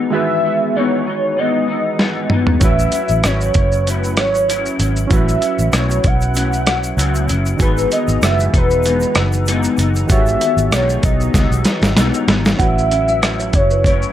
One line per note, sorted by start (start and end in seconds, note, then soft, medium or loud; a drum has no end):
0.00 0.12 E3 soft
0.00 0.12 B3 medium
0.00 0.12 D#4 medium
0.10 0.43 G#2 medium
0.10 2.57 D#3 medium
0.10 0.44 E3 medium
0.10 2.57 G#3 medium
0.10 0.44 B3 medium
0.10 2.58 F#4 medium
0.10 2.58 G#4 medium
0.10 0.77 E5 loud
0.15 2.59 B4 medium
0.45 0.76 E3 soft
0.45 0.75 B3 medium
0.76 1.06 G#2 medium
0.76 1.07 E3 medium
0.76 1.06 B3 medium
0.76 1.05 D#4 medium
0.76 1.40 C#5 loud
1.06 1.37 E3 soft
1.06 1.38 B3 soft
1.06 1.37 D#4 medium
1.37 1.68 G#2 medium
1.37 1.69 E3 medium
1.37 1.68 B3 medium
1.37 1.66 D#4 medium
1.37 2.31 D#5 loud
1.68 1.99 E3 soft
1.68 1.99 B3 soft
1.68 1.99 D#4 medium
1.99 2.30 G#2 medium
1.99 2.31 E3 medium
1.99 2.31 B3 medium
1.99 2.29 D#4 medium
1.99 snare medium
2.30 2.62 E3 medium
2.30 2.62 B3 medium
2.30 2.61 D#4 medium
2.30 mid tom medium
2.47 floor tom medium
2.60 2.86 A1 loud
2.60 2.93 A2 medium
2.60 2.93 F#3 medium
2.60 5.06 C#4 medium
2.60 2.94 C#4 medium
2.60 5.07 E4 medium
2.60 2.92 E4 medium
2.60 5.08 F#4 medium
2.60 kick medium
2.60 closed hi-hat medium
2.60 shaker medium
2.64 5.08 B4 medium
2.64 3.27 E5 loud
2.79 shaker medium
2.79 shaker soft
2.92 3.24 E4 soft
2.92 closed hi-hat soft
2.92 shaker medium
2.94 3.23 F#3 soft
2.94 3.24 C#4 soft
2.94 shaker soft
3.09 3.21 A1 medium
3.09 shaker soft
3.10 shaker medium
3.24 3.49 G#1 medium
3.24 3.55 F#3 medium
3.24 3.56 C#4 medium
3.24 3.54 E4 medium
3.24 3.90 C#5 loud
3.24 cross-stick medium
3.24 closed hi-hat medium
3.24 shaker medium
3.41 shaker medium
3.41 shaker soft
3.54 4.17 F#1 medium
3.54 3.87 C#4 medium
3.54 3.86 E4 medium
3.54 kick medium
3.54 closed hi-hat medium
3.54 shaker medium
3.58 3.87 F#3 soft
3.72 shaker soft
3.74 shaker soft
3.87 4.18 A2 medium
3.87 4.18 F#3 medium
3.87 4.17 C#4 medium
3.87 4.16 E4 medium
3.87 4.20 B4 medium
3.87 closed hi-hat medium
3.87 shaker medium
4.04 shaker soft
4.17 4.67 G#1 medium
4.17 4.47 F#3 soft
4.17 4.48 C#4 soft
4.17 4.48 E4 medium
4.17 4.80 C#5 loud
4.17 cross-stick medium
4.17 closed hi-hat medium
4.17 shaker medium
4.35 shaker soft
4.36 shaker soft
4.48 4.80 F#3 medium
4.48 4.79 C#4 medium
4.48 4.78 E4 medium
4.48 closed hi-hat medium
4.48 shaker medium
4.66 shaker medium
4.66 shaker soft
4.79 5.04 G#1 medium
4.79 5.10 F#3 soft
4.79 5.11 C#4 medium
4.79 5.10 E4 medium
4.79 closed hi-hat soft
4.79 shaker medium
4.82 shaker medium
4.96 shaker soft
4.98 shaker soft
5.07 5.36 A1 loud
5.07 5.42 A2 medium
5.07 7.55 C#4 medium
5.07 7.56 E4 medium
5.07 7.56 F#4 medium
5.07 kick loud
5.07 closed hi-hat medium
5.07 shaker medium
5.12 5.42 F#3 medium
5.12 5.41 C#4 medium
5.12 5.39 E4 medium
5.12 7.57 B4 medium
5.12 5.77 E5 loud
5.12 shaker medium
5.28 shaker medium
5.28 shaker soft
5.41 5.72 F#3 soft
5.41 5.72 C#4 medium
5.41 5.72 E4 soft
5.41 closed hi-hat soft
5.41 shaker medium
5.41 shaker soft
5.59 5.70 A1 medium
5.59 shaker soft
5.59 shaker medium
5.72 5.98 B1 medium
5.72 6.04 A2 medium
5.72 6.04 F#3 medium
5.72 6.04 C#4 medium
5.72 6.03 E4 medium
5.72 6.08 C#5 medium
5.72 cross-stick medium
5.72 closed hi-hat medium
5.72 shaker medium
5.90 shaker soft
5.90 shaker medium
6.04 6.94 B1 medium
6.04 6.34 F#3 soft
6.04 6.35 C#4 medium
6.04 6.35 E4 medium
6.04 7.30 F#5 loud
6.04 kick medium
6.04 closed hi-hat medium
6.04 shaker medium
6.21 shaker soft
6.35 6.66 A2 medium
6.35 6.67 F#3 medium
6.35 6.66 C#4 medium
6.35 closed hi-hat medium
6.35 shaker medium
6.37 6.65 E4 medium
6.37 shaker medium
6.53 shaker soft
6.66 6.97 F#3 soft
6.66 6.97 C#4 soft
6.66 6.98 E4 medium
6.66 cross-stick medium
6.66 closed hi-hat medium
6.66 shaker medium
6.84 shaker soft
6.97 7.30 C#2 medium
6.97 7.29 A2 medium
6.97 7.29 F#3 medium
6.97 7.28 C#4 medium
6.97 7.27 E4 medium
6.97 closed hi-hat medium
6.97 shaker medium
7.15 shaker soft
7.15 shaker medium
7.28 7.53 F#1 medium
7.28 7.60 F#3 soft
7.28 7.60 C#4 medium
7.28 7.60 E4 medium
7.28 closed hi-hat soft
7.28 shaker medium
7.28 shaker soft
7.46 shaker soft
7.57 7.85 G#1 loud
7.57 7.91 G#2 medium
7.57 10.04 D#3 medium
7.57 7.92 E3 medium
7.57 10.05 F#4 medium
7.57 10.06 G#4 medium
7.57 kick medium
7.57 closed hi-hat medium
7.57 shaker medium
7.61 7.91 B3 medium
7.61 7.90 D#4 medium
7.61 7.90 B4 medium
7.61 10.07 B4 medium
7.77 shaker soft
7.77 shaker medium
7.91 8.21 E3 soft
7.91 8.22 B3 soft
7.91 8.23 D#4 medium
7.91 8.21 D#5 medium
7.91 closed hi-hat medium
7.91 shaker soft
7.91 shaker medium
8.08 8.19 G#1 loud
8.08 shaker soft
8.22 8.47 F#1 medium
8.22 8.54 G#2 medium
8.22 8.54 E3 medium
8.22 8.53 B3 medium
8.22 8.58 E5 loud
8.22 cross-stick medium
8.22 closed hi-hat medium
8.22 shaker medium
8.39 shaker soft
8.39 shaker medium
8.54 9.04 E1 medium
8.54 8.84 E3 soft
8.54 8.85 B3 medium
8.54 8.85 D#4 medium
8.54 9.80 B4 medium
8.54 kick medium
8.54 closed hi-hat medium
8.54 shaker medium
8.70 shaker soft
8.83 9.16 G#2 medium
8.83 9.16 E3 medium
8.83 closed hi-hat medium
8.83 shaker medium
8.86 9.15 B3 medium
8.86 9.14 D#4 medium
8.86 shaker medium
9.00 shaker soft
9.03 shaker soft
9.15 9.66 F#1 medium
9.15 9.46 E3 soft
9.15 9.47 B3 medium
9.15 9.47 D#4 medium
9.15 cross-stick medium
9.15 closed hi-hat medium
9.15 shaker medium
9.33 shaker soft
9.46 9.78 G#2 medium
9.46 9.79 E3 medium
9.46 closed hi-hat medium
9.46 shaker medium
9.48 9.79 B3 medium
9.48 9.77 D#4 loud
9.48 shaker medium
9.63 shaker soft
9.63 shaker medium
9.77 10.03 F#1 medium
9.77 10.10 D#4 medium
9.77 closed hi-hat medium
9.77 shaker soft
9.79 10.09 E3 soft
9.79 10.10 B3 medium
9.79 shaker soft
9.95 shaker soft
10.07 10.35 G#1 loud
10.07 10.41 G#2 medium
10.07 12.54 D#3 medium
10.07 10.41 E3 medium
10.07 10.42 B3 medium
10.07 12.55 F#4 medium
10.07 10.17 G4 medium
10.07 10.75 E5 loud
10.07 kick loud
10.07 closed hi-hat medium
10.07 shaker medium
10.12 12.57 C#5 medium
10.16 12.59 G#4 medium
10.26 shaker soft
10.28 shaker medium
10.41 10.71 E3 soft
10.41 10.72 B3 soft
10.41 closed hi-hat medium
10.41 shaker soft
10.57 10.69 G#1 medium
10.57 shaker soft
10.71 10.97 B1 medium
10.71 11.03 G#2 medium
10.71 11.04 E3 medium
10.71 11.04 B3 medium
10.71 11.03 D#4 medium
10.71 11.04 C#5 medium
10.71 cross-stick loud
10.71 closed hi-hat medium
10.71 shaker medium
10.89 shaker soft
10.89 shaker medium
11.03 11.28 B1 medium
11.03 11.35 E3 soft
11.03 11.35 B3 soft
11.03 11.35 D#4 medium
11.03 12.25 D#5 loud
11.03 kick loud
11.03 closed hi-hat medium
11.03 shaker medium
11.03 shaker soft
11.20 shaker soft
11.34 11.48 C#2 medium
11.34 11.66 G#2 medium
11.34 11.67 E3 medium
11.34 11.67 B3 medium
11.34 11.65 D#4 medium
11.34 kick medium
11.34 snare medium
11.34 closed hi-hat medium
11.34 shaker medium
11.50 11.62 B1 medium
11.50 shaker soft
11.65 11.97 B3 soft
11.65 11.97 D#4 medium
11.65 snare medium
11.65 closed hi-hat medium
11.65 shaker medium
11.65 shaker soft
11.69 11.96 E3 soft
11.82 11.93 G#1 medium
11.82 snare medium
11.82 shaker soft
11.96 12.10 B1 medium
11.96 12.28 G#2 medium
11.96 12.29 E3 medium
11.96 12.28 B3 medium
11.96 12.26 D#4 loud
11.96 snare medium
11.96 closed hi-hat medium
11.96 shaker medium
12.14 shaker soft
12.14 shaker medium
12.27 12.53 G#1 medium
12.27 12.61 E3 soft
12.27 12.60 B3 medium
12.27 12.59 D#4 medium
12.27 snare medium
12.27 closed hi-hat soft
12.27 shaker soft
12.45 snare medium
12.45 shaker soft
12.57 13.49 A1 loud
12.57 12.91 A2 medium
12.57 12.92 F#3 medium
12.57 14.13 C#4 medium
12.57 12.90 C#4 medium
12.57 14.13 E4 medium
12.57 14.13 F#4 medium
12.57 13.56 E5 loud
12.57 12.89 F#5 medium
12.57 kick medium
12.57 closed hi-hat medium
12.57 shaker medium
12.62 12.88 E4 medium
12.62 14.13 B4 medium
12.79 shaker medium
12.89 13.21 F#3 soft
12.89 13.21 C#4 soft
12.89 13.21 E4 medium
12.89 closed hi-hat medium
12.89 shaker medium
13.08 13.22 E5 medium
13.08 shaker soft
13.21 13.53 A2 medium
13.21 13.53 F#3 medium
13.21 13.52 C#4 medium
13.21 13.51 E4 medium
13.21 cross-stick loud
13.21 closed hi-hat medium
13.21 shaker medium
13.39 13.53 C#5 medium
13.39 shaker medium
13.52 14.04 F#1 medium
13.52 13.84 F#3 soft
13.52 13.85 C#4 soft
13.52 13.84 E4 medium
13.52 13.85 C#5 medium
13.52 kick medium
13.52 closed hi-hat medium
13.52 shaker medium
13.71 13.84 B4 medium
13.71 shaker soft
13.84 14.13 A2 medium
13.84 14.13 F#3 medium
13.84 14.13 C#4 medium
13.84 14.13 E4 medium
13.84 14.13 C#5 medium
13.84 kick medium
13.84 closed hi-hat medium
13.84 shaker medium
14.02 shaker medium